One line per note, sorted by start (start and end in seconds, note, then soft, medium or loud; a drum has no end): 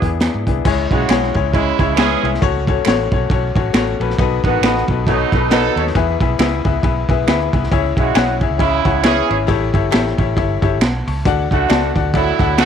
0.02 0.27 E2 medium
0.02 0.16 B3 medium
0.02 0.17 D4 medium
0.02 0.17 E4 medium
0.02 0.18 G#4 medium
0.02 kick medium
0.02 closed hi-hat medium
0.20 0.41 B3 medium
0.20 0.41 D4 medium
0.20 0.41 E4 medium
0.20 0.42 G#4 medium
0.20 finger snap medium
0.20 snare loud
0.20 closed hi-hat medium
0.34 0.45 G#2 medium
0.47 0.62 C2 medium
0.47 0.61 B3 medium
0.47 0.61 D4 medium
0.47 0.62 E4 medium
0.47 0.62 G#4 medium
0.47 kick medium
0.47 closed hi-hat medium
0.65 0.86 C#2 medium
0.65 0.85 G#3 loud
0.65 0.85 C#4 medium
0.65 0.85 E4 medium
0.65 0.86 G#4 medium
0.65 0.86 C#5 loud
0.65 kick loud
0.65 crash loud
0.90 1.06 B1 medium
0.90 1.33 C#3 medium
0.90 1.32 G#3 medium
0.90 1.05 G#3 medium
0.90 1.05 C#4 medium
0.90 1.06 E4 medium
0.90 1.32 F#4 medium
0.90 1.06 G#4 medium
0.90 1.06 C#5 medium
0.90 kick medium
0.90 ride medium
1.09 1.30 B1 medium
1.09 1.29 G#3 loud
1.09 1.29 C#4 medium
1.09 1.30 E4 medium
1.09 1.30 G#4 loud
1.09 1.30 C#5 loud
1.09 finger snap medium
1.09 snare loud
1.09 ride medium
1.23 snare soft
1.34 1.70 C#2 loud
1.34 1.49 G#3 medium
1.34 1.49 C#4 medium
1.34 1.49 E4 medium
1.34 1.50 G#4 medium
1.34 1.50 C#5 loud
1.34 kick medium
1.34 ride medium
1.52 1.94 C#3 medium
1.52 1.95 G#3 loud
1.52 1.73 G#3 medium
1.52 1.73 C#4 medium
1.52 1.95 E4 loud
1.52 1.73 E4 medium
1.52 1.74 G#4 medium
1.52 1.74 C#5 medium
1.52 kick loud
1.52 ride medium
1.79 2.14 C#2 medium
1.79 1.93 G#3 medium
1.79 1.93 C#4 medium
1.79 1.93 E4 medium
1.79 1.94 G#4 medium
1.79 1.94 C#5 loud
1.79 kick medium
1.79 ride medium
1.96 2.30 E3 loud
1.96 2.17 G#3 loud
1.96 2.30 C#4 loud
1.96 2.17 C#4 loud
1.96 2.17 E4 loud
1.96 2.30 G#4 loud
1.96 2.18 G#4 loud
1.96 2.18 E5 loud
1.96 finger snap medium
1.96 snare loud
1.96 ride medium
2.22 2.38 C2 medium
2.22 2.37 G#3 medium
2.22 2.37 C#4 medium
2.22 2.37 E4 medium
2.22 2.38 G#4 medium
2.22 2.38 E5 medium
2.22 ride medium
2.34 snare soft
2.41 2.77 C#2 loud
2.41 2.61 A3 loud
2.41 2.61 C#4 loud
2.41 2.62 F#4 loud
2.41 2.62 A4 loud
2.41 2.62 C#5 loud
2.41 kick loud
2.41 ride medium
2.67 2.81 A3 medium
2.67 2.82 C#4 medium
2.67 2.82 F#4 medium
2.67 2.82 A4 medium
2.67 2.82 C#5 loud
2.67 kick medium
2.67 ride medium
2.85 3.07 A1 medium
2.85 3.05 A3 loud
2.85 3.06 C#4 loud
2.85 3.06 F#4 loud
2.85 3.06 A4 loud
2.85 3.07 C#5 loud
2.85 finger snap medium
2.85 snare loud
2.85 ride medium
3.12 3.26 B1 medium
3.12 3.26 A3 medium
3.12 3.26 C#4 medium
3.12 3.26 F#4 medium
3.12 3.27 A4 medium
3.12 3.27 C#5 medium
3.12 kick medium
3.12 ride medium
3.30 3.51 B1 loud
3.30 3.50 A3 medium
3.30 3.50 C#4 medium
3.30 3.50 F#4 medium
3.30 3.50 A4 medium
3.30 3.50 C#5 loud
3.30 kick loud
3.30 ride medium
3.55 3.70 A1 medium
3.55 3.69 A3 medium
3.55 3.70 C#4 medium
3.55 3.70 F#4 medium
3.55 3.70 A4 medium
3.55 3.70 C#5 medium
3.55 kick loud
3.55 ride medium
3.73 3.95 A1 loud
3.73 3.93 A3 loud
3.73 3.94 C#4 loud
3.73 3.94 F#4 loud
3.73 3.94 A4 loud
3.73 3.94 C#5 loud
3.73 finger snap loud
3.73 snare loud
3.73 ride medium
4.00 4.15 A#1 loud
4.00 4.14 A3 medium
4.00 4.14 C#4 medium
4.00 4.14 F#4 medium
4.00 4.14 A4 medium
4.00 4.15 B4 medium
4.00 ride medium
4.10 snare soft
4.18 4.39 B1 loud
4.18 4.38 B3 loud
4.18 4.38 D#4 loud
4.18 4.39 F#4 loud
4.18 4.39 A4 loud
4.18 4.39 B4 loud
4.18 kick loud
4.18 ride medium
4.44 4.58 A1 loud
4.44 4.86 D#3 medium
4.44 4.86 B3 medium
4.44 4.59 B3 medium
4.44 4.59 D#4 medium
4.44 4.86 F#4 medium
4.44 4.59 F#4 medium
4.44 4.59 A4 medium
4.44 4.60 B4 medium
4.44 kick medium
4.44 ride medium
4.61 4.82 A1 loud
4.61 4.82 B3 loud
4.61 4.83 D#4 loud
4.61 4.83 F#4 loud
4.61 4.83 A4 loud
4.61 finger snap loud
4.61 snare loud
4.61 ride medium
4.65 4.83 B4 loud
4.77 snare soft
4.88 5.23 B1 medium
4.88 5.03 B3 medium
4.88 5.03 D#4 medium
4.88 5.03 F#4 medium
4.88 5.03 A4 medium
4.88 5.04 B4 medium
4.88 kick medium
4.88 ride medium
5.06 5.48 B2 loud
5.06 5.48 A3 loud
5.06 5.27 B3 medium
5.06 5.48 D#4 loud
5.06 5.27 D#4 medium
5.06 5.27 F#4 medium
5.06 5.27 A4 medium
5.06 5.28 C#5 loud
5.06 kick loud
5.06 ride medium
5.32 5.68 B1 medium
5.32 5.47 B3 medium
5.32 5.47 D#4 medium
5.32 5.47 F#4 medium
5.32 5.48 A4 medium
5.32 5.48 B4 medium
5.32 kick medium
5.32 ride medium
5.50 5.84 F#3 loud
5.50 5.70 B3 loud
5.50 5.71 D#4 loud
5.50 5.84 D#4 loud
5.50 5.71 F#4 loud
5.50 5.84 A4 loud
5.50 5.71 A4 loud
5.50 5.71 B4 loud
5.50 finger snap loud
5.50 snare loud
5.50 ride medium
5.76 5.91 D#2 medium
5.76 5.91 B3 medium
5.76 5.91 D#4 medium
5.76 5.91 F#4 medium
5.76 5.91 A4 medium
5.76 5.91 C#5 medium
5.76 ride medium
5.87 snare soft
5.95 6.15 E2 loud
5.95 6.15 B3 loud
5.95 6.15 E4 medium
5.95 6.15 G#4 loud
5.95 6.15 B4 medium
5.95 6.15 E5 loud
5.95 kick loud
5.95 ride medium
6.20 6.35 B1 medium
6.20 6.34 B3 medium
6.20 6.35 E4 medium
6.20 6.35 G#4 medium
6.20 6.35 B4 medium
6.20 6.35 E5 loud
6.20 kick medium
6.20 ride medium
6.39 6.60 C#2 loud
6.39 6.59 B3 loud
6.39 6.59 E4 loud
6.39 6.59 G#4 medium
6.39 6.59 B4 loud
6.39 6.59 E5 loud
6.39 finger snap medium
6.39 snare loud
6.39 ride medium
6.65 6.80 C#2 loud
6.65 6.79 B3 medium
6.65 6.79 E4 medium
6.65 6.79 G#4 medium
6.65 6.79 B4 medium
6.65 6.80 E5 medium
6.65 kick medium
6.65 ride medium
6.82 7.04 B1 medium
6.82 7.02 B3 medium
6.82 7.03 E4 medium
6.82 7.03 G#4 medium
6.82 7.03 B4 medium
6.82 7.03 E5 medium
6.82 kick medium
6.82 ride medium
7.08 7.23 B1 medium
7.08 7.23 B3 medium
7.08 7.23 E4 medium
7.08 7.23 G#4 medium
7.08 7.24 B4 medium
7.08 7.24 E5 loud
7.08 kick medium
7.08 ride medium
7.27 7.48 D2 medium
7.27 7.47 B3 loud
7.27 7.47 E4 loud
7.27 7.48 G#4 loud
7.27 7.48 B4 loud
7.27 7.48 E5 loud
7.27 finger snap loud
7.27 snare loud
7.27 ride medium
7.53 7.68 C2 medium
7.53 7.67 B3 medium
7.53 7.67 E4 medium
7.53 7.67 G#4 medium
7.53 7.67 B4 medium
7.53 7.68 E5 medium
7.53 kick medium
7.53 ride medium
7.63 snare soft
7.71 7.92 C#2 loud
7.71 7.91 C#4 loud
7.71 7.91 E4 loud
7.71 7.91 G#4 loud
7.71 7.92 C#5 medium
7.71 7.92 E5 loud
7.71 kick loud
7.71 ride medium
7.96 8.12 B1 medium
7.96 8.40 C#3 medium
7.96 8.40 G#3 medium
7.96 8.11 C#4 medium
7.96 8.11 E4 medium
7.96 8.39 F#4 medium
7.96 8.11 G#4 medium
7.96 8.12 C#5 medium
7.96 8.12 E5 medium
7.96 kick medium
7.96 ride medium
8.14 8.43 B1 medium
8.14 8.35 C#4 loud
8.14 8.35 E4 loud
8.14 8.35 G#4 loud
8.14 8.35 C#5 loud
8.14 8.36 F#5 loud
8.14 finger snap medium
8.14 snare loud
8.14 ride medium
8.41 8.55 C#4 medium
8.41 8.56 E4 medium
8.41 8.56 G#4 medium
8.41 8.56 C#5 medium
8.41 8.56 E5 medium
8.41 kick medium
8.41 ride medium
8.51 8.79 C#2 medium
8.58 9.01 C#3 loud
8.58 9.01 G#3 loud
8.58 8.78 C#4 medium
8.58 8.79 E4 medium
8.58 9.01 E4 loud
8.58 8.79 G#4 medium
8.58 8.79 C#5 medium
8.58 8.80 E5 loud
8.58 kick loud
8.58 ride medium
8.84 9.20 C#2 medium
8.84 8.99 C#4 medium
8.84 8.99 E4 medium
8.84 8.99 G#4 medium
8.84 9.00 C#5 medium
8.84 9.00 F#5 loud
8.84 kick loud
8.84 ride medium
9.03 9.37 E3 loud
9.03 9.23 C#4 loud
9.03 9.37 C#4 loud
9.03 9.24 E4 loud
9.03 9.37 G#4 loud
9.03 9.24 G#4 loud
9.03 9.24 C#5 loud
9.03 9.24 E5 loud
9.03 finger snap loud
9.03 snare loud
9.03 ride medium
9.28 9.45 G#1 loud
9.28 9.43 C#4 medium
9.28 9.43 E4 medium
9.28 9.44 G#4 medium
9.28 9.44 C#5 medium
9.28 9.44 E5 medium
9.28 ride medium
9.47 9.69 A1 loud
9.47 9.67 E4 loud
9.47 9.67 G4 medium
9.47 9.67 A4 loud
9.47 9.68 C#5 loud
9.47 9.68 E5 loud
9.47 kick loud
9.47 ride medium
9.73 9.88 G1 medium
9.73 9.87 E4 medium
9.73 9.87 G4 medium
9.73 9.88 A4 medium
9.73 9.88 C#5 medium
9.73 9.88 E5 loud
9.73 kick medium
9.73 ride medium
9.91 10.13 A1 medium
9.91 10.11 E4 loud
9.91 10.12 G4 loud
9.91 10.12 A4 loud
9.91 10.12 C#5 loud
9.91 10.12 E5 loud
9.91 finger snap medium
9.91 snare loud
9.91 ride medium
10.07 snare soft
10.17 10.33 A1 loud
10.17 10.32 E4 medium
10.17 10.32 G4 medium
10.17 10.32 A4 medium
10.17 10.33 C#5 medium
10.17 10.33 E5 medium
10.17 kick medium
10.17 ride medium
10.36 10.57 G1 loud
10.36 10.56 E4 medium
10.36 10.56 G4 medium
10.36 10.56 A4 medium
10.36 10.57 C#5 medium
10.36 10.57 E5 loud
10.36 kick loud
10.36 ride medium
10.61 10.81 G1 medium
10.61 10.76 E4 medium
10.61 10.76 G4 medium
10.61 10.77 A4 medium
10.61 10.77 C#5 medium
10.61 10.77 E5 loud
10.61 kick medium
10.61 ride medium
10.81 11.01 B1 medium
10.81 11.06 F#5 medium
10.81 11.06 A5 medium
10.81 finger snap medium
10.81 snare loud
10.81 ride medium
11.07 11.22 C#2 loud
11.07 11.49 A5 medium
11.07 11.49 C#6 medium
11.07 open hi-hat soft
11.07 ride medium
11.25 11.46 D2 loud
11.25 11.45 D4 loud
11.25 11.45 F#4 loud
11.25 11.45 A4 loud
11.25 11.46 D5 loud
11.25 11.46 F#5 loud
11.25 kick loud
11.25 hi-hat pedal medium
11.25 ride medium
11.50 11.66 C#2 medium
11.50 11.93 D3 medium
11.50 11.93 A3 medium
11.50 11.65 D4 medium
11.50 11.92 F#4 medium
11.50 11.65 F#4 medium
11.50 11.66 A4 medium
11.50 11.66 D5 medium
11.50 11.66 F#5 loud
11.50 kick medium
11.50 ride medium
11.69 11.90 C#2 medium
11.69 11.89 D4 loud
11.69 11.89 F#4 loud
11.69 11.89 A4 loud
11.69 11.89 D5 loud
11.69 11.90 A5 loud
11.69 finger snap medium
11.69 snare loud
11.69 ride medium
11.94 12.30 D2 medium
11.94 12.09 D4 medium
11.94 12.09 F#4 medium
11.94 12.09 A4 medium
11.94 12.09 D5 medium
11.94 12.10 F#5 medium
11.94 kick medium
11.94 ride medium
12.13 12.56 A2 loud
12.13 12.56 F#3 loud
12.13 12.33 D4 medium
12.13 12.56 E4 loud
12.13 12.33 F#4 medium
12.13 12.33 A4 medium
12.13 12.33 D5 medium
12.13 12.34 F#5 loud
12.13 kick loud
12.13 ride medium
12.39 12.65 D2 medium
12.39 12.53 D4 medium
12.39 12.53 F#4 medium
12.39 12.53 A4 medium
12.39 12.54 D5 medium
12.39 12.54 F#5 loud
12.39 kick loud
12.39 ride medium
12.57 12.65 D3 loud
12.57 12.65 A3 loud
12.57 12.65 D4 loud
12.57 12.65 F#4 loud
12.57 12.65 A4 loud
12.57 12.65 D5 medium
12.57 12.65 F#5 loud
12.57 finger snap loud
12.57 snare loud
12.57 ride medium